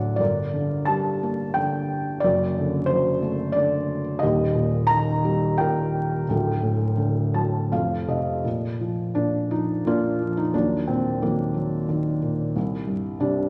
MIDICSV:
0, 0, Header, 1, 2, 480
1, 0, Start_track
1, 0, Tempo, 684151
1, 147, Time_signature, 3, 2, 24, 8
1, 1104, Tempo, 665188
1, 3504, Tempo, 693642
1, 4944, Tempo, 737101
1, 5904, Tempo, 701754
1, 6864, Tempo, 671892
1, 9460, End_track
2, 0, Start_track
2, 0, Title_t, "Felt piano"
2, 0, Program_c, 0, 0
2, 0, Control_c, 0, 64, 127
2, 0, Note_on_c, 0, 26, 53
2, 0, Note_on_c, 0, 38, 57
2, 0, Note_on_c, 0, 45, 45
2, 0, Note_on_c, 0, 50, 47
2, 0, Note_on_c, 0, 54, 48
2, 0, Note_on_c, 0, 69, 54
2, 0, Note_on_c, 0, 74, 76
2, 0, Note_on_c, 0, 78, 72
2, 113, Note_off_c, 0, 74, 0
2, 113, Note_on_c, 0, 74, 74
2, 118, Note_off_c, 0, 26, 0
2, 118, Note_off_c, 0, 38, 0
2, 124, Note_off_c, 0, 45, 0
2, 132, Note_off_c, 0, 50, 0
2, 134, Note_on_c, 0, 43, 53
2, 135, Note_off_c, 0, 54, 0
2, 139, Note_on_c, 0, 31, 48
2, 142, Note_on_c, 0, 70, 48
2, 155, Control_c, 0, 64, 0
2, 156, Note_off_c, 0, 69, 0
2, 161, Note_off_c, 0, 78, 0
2, 284, Control_c, 0, 64, 127
2, 376, Note_on_c, 0, 50, 44
2, 586, Note_off_c, 0, 74, 0
2, 600, Note_on_c, 0, 81, 85
2, 616, Note_on_c, 0, 55, 45
2, 839, Note_off_c, 0, 70, 0
2, 861, Note_on_c, 0, 58, 45
2, 1079, Note_on_c, 0, 79, 82
2, 1081, Note_off_c, 0, 50, 0
2, 1092, Note_on_c, 0, 50, 49
2, 1104, Note_off_c, 0, 81, 0
2, 1546, Note_off_c, 0, 79, 0
2, 1552, Note_off_c, 0, 55, 0
2, 1553, Note_off_c, 0, 43, 0
2, 1555, Note_off_c, 0, 31, 0
2, 1559, Note_on_c, 0, 74, 87
2, 1562, Note_off_c, 0, 58, 0
2, 1567, Note_off_c, 0, 50, 0
2, 1579, Note_on_c, 0, 30, 60
2, 1584, Note_on_c, 0, 42, 64
2, 1588, Note_on_c, 0, 66, 57
2, 1597, Control_c, 0, 64, 0
2, 1709, Control_c, 0, 64, 127
2, 1830, Note_on_c, 0, 50, 50
2, 2021, Note_off_c, 0, 74, 0
2, 2033, Note_on_c, 0, 72, 89
2, 2066, Note_on_c, 0, 54, 54
2, 2271, Note_off_c, 0, 66, 0
2, 2294, Note_on_c, 0, 57, 52
2, 2494, Note_off_c, 0, 72, 0
2, 2511, Note_on_c, 0, 74, 86
2, 2525, Note_off_c, 0, 50, 0
2, 2536, Note_on_c, 0, 50, 53
2, 2858, Note_off_c, 0, 74, 0
2, 2984, Note_off_c, 0, 30, 0
2, 2987, Note_off_c, 0, 42, 0
2, 2990, Note_off_c, 0, 54, 0
2, 2992, Note_on_c, 0, 75, 86
2, 2993, Note_off_c, 0, 57, 0
2, 3002, Note_off_c, 0, 50, 0
2, 3016, Note_on_c, 0, 39, 62
2, 3018, Note_on_c, 0, 67, 63
2, 3020, Note_on_c, 0, 27, 60
2, 3028, Control_c, 0, 64, 0
2, 3159, Control_c, 0, 64, 127
2, 3251, Note_on_c, 0, 46, 55
2, 3463, Note_off_c, 0, 75, 0
2, 3481, Note_on_c, 0, 82, 105
2, 3502, Note_on_c, 0, 51, 53
2, 3716, Note_off_c, 0, 67, 0
2, 3744, Note_on_c, 0, 55, 56
2, 3943, Note_off_c, 0, 82, 0
2, 3973, Note_on_c, 0, 79, 82
2, 3974, Note_off_c, 0, 46, 0
2, 3985, Note_on_c, 0, 46, 52
2, 3995, Note_on_c, 0, 70, 60
2, 4430, Note_off_c, 0, 39, 0
2, 4430, Note_off_c, 0, 51, 0
2, 4432, Note_off_c, 0, 27, 0
2, 4438, Note_off_c, 0, 55, 0
2, 4446, Note_off_c, 0, 46, 0
2, 4462, Note_on_c, 0, 26, 58
2, 4466, Note_on_c, 0, 38, 61
2, 4469, Control_c, 0, 64, 0
2, 4606, Control_c, 0, 64, 127
2, 4704, Note_on_c, 0, 45, 44
2, 4938, Note_on_c, 0, 50, 48
2, 5178, Note_on_c, 0, 54, 47
2, 5180, Note_on_c, 0, 81, 54
2, 5393, Note_off_c, 0, 79, 0
2, 5399, Note_off_c, 0, 26, 0
2, 5400, Note_off_c, 0, 38, 0
2, 5403, Note_off_c, 0, 70, 0
2, 5404, Note_off_c, 0, 45, 0
2, 5406, Note_off_c, 0, 50, 0
2, 5406, Note_off_c, 0, 81, 0
2, 5415, Note_off_c, 0, 54, 0
2, 5424, Note_on_c, 0, 41, 55
2, 5425, Note_on_c, 0, 29, 52
2, 5427, Note_on_c, 0, 77, 58
2, 5431, Control_c, 0, 64, 0
2, 5559, Control_c, 0, 64, 127
2, 5651, Note_off_c, 0, 77, 0
2, 5661, Note_on_c, 0, 48, 41
2, 5664, Note_on_c, 0, 75, 53
2, 5878, Note_off_c, 0, 29, 0
2, 5885, Note_off_c, 0, 75, 0
2, 5889, Note_off_c, 0, 41, 0
2, 5894, Note_off_c, 0, 48, 0
2, 5897, Note_on_c, 0, 46, 49
2, 5913, Control_c, 0, 64, 0
2, 6025, Control_c, 0, 64, 127
2, 6142, Note_on_c, 0, 53, 39
2, 6373, Note_off_c, 0, 46, 0
2, 6378, Note_on_c, 0, 62, 69
2, 6383, Note_on_c, 0, 46, 45
2, 6613, Note_off_c, 0, 53, 0
2, 6623, Note_on_c, 0, 53, 42
2, 6625, Note_on_c, 0, 63, 69
2, 6629, Note_off_c, 0, 62, 0
2, 6845, Note_off_c, 0, 46, 0
2, 6855, Note_on_c, 0, 46, 41
2, 6870, Note_off_c, 0, 63, 0
2, 6872, Note_on_c, 0, 58, 55
2, 6872, Note_on_c, 0, 65, 79
2, 6877, Note_on_c, 0, 62, 59
2, 7090, Note_off_c, 0, 53, 0
2, 7101, Note_on_c, 0, 53, 43
2, 7230, Note_on_c, 0, 63, 71
2, 7245, Note_off_c, 0, 65, 0
2, 7326, Note_off_c, 0, 58, 0
2, 7328, Note_off_c, 0, 62, 0
2, 7331, Note_off_c, 0, 46, 0
2, 7339, Note_off_c, 0, 53, 0
2, 7342, Note_off_c, 0, 63, 0
2, 7346, Note_on_c, 0, 39, 48
2, 7350, Note_on_c, 0, 54, 52
2, 7351, Note_on_c, 0, 62, 70
2, 7353, Note_on_c, 0, 58, 50
2, 7360, Control_c, 0, 64, 0
2, 7496, Control_c, 0, 64, 127
2, 7589, Note_on_c, 0, 46, 42
2, 7590, Note_on_c, 0, 60, 69
2, 7600, Note_off_c, 0, 62, 0
2, 7829, Note_off_c, 0, 54, 0
2, 7829, Note_off_c, 0, 58, 0
2, 7836, Note_on_c, 0, 51, 42
2, 7839, Note_on_c, 0, 54, 44
2, 7839, Note_on_c, 0, 58, 63
2, 7841, Note_off_c, 0, 60, 0
2, 8056, Note_off_c, 0, 54, 0
2, 8067, Note_on_c, 0, 54, 45
2, 8291, Note_off_c, 0, 58, 0
2, 8303, Note_off_c, 0, 51, 0
2, 8313, Note_on_c, 0, 51, 48
2, 8526, Note_off_c, 0, 46, 0
2, 8553, Note_on_c, 0, 46, 42
2, 8763, Note_off_c, 0, 39, 0
2, 8767, Note_off_c, 0, 54, 0
2, 8778, Note_off_c, 0, 51, 0
2, 8785, Note_off_c, 0, 46, 0
2, 8792, Note_on_c, 0, 36, 58
2, 8803, Control_c, 0, 64, 0
2, 8913, Control_c, 0, 64, 127
2, 9019, Note_on_c, 0, 43, 46
2, 9250, Note_on_c, 0, 48, 43
2, 9254, Note_on_c, 0, 62, 72
2, 9265, Note_on_c, 0, 55, 55
2, 9460, Note_off_c, 0, 36, 0
2, 9460, Note_off_c, 0, 43, 0
2, 9460, Note_off_c, 0, 48, 0
2, 9460, Note_off_c, 0, 55, 0
2, 9460, Note_off_c, 0, 62, 0
2, 9460, End_track
0, 0, End_of_file